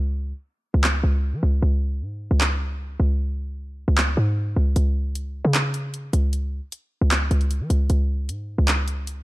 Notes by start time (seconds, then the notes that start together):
Already playing: C#2
0.74 C#2
0.84 clap
1.04 C#2
1.33 E3
1.43 C#2
1.62 C#2
2.02 G#2
2.31 C#2
2.41 clap
3.00 C#2
3.88 C#2
3.98 clap
4.17 G#2
4.56 C#2
4.76 C#2, closed hi-hat
5.15 closed hi-hat
5.45 C#3
5.54 clap, closed hi-hat
5.74 closed hi-hat
5.94 closed hi-hat
6.13 C#2, closed hi-hat
6.33 closed hi-hat
6.72 closed hi-hat
7.01 C#2
7.11 clap, closed hi-hat
7.31 C#2, closed hi-hat
7.41 closed hi-hat
7.51 closed hi-hat
7.60 E3
7.70 C#2, closed hi-hat
7.90 C#2, closed hi-hat
8.29 G#2, closed hi-hat
8.58 C#2
8.68 clap, closed hi-hat
8.88 closed hi-hat
9.07 closed hi-hat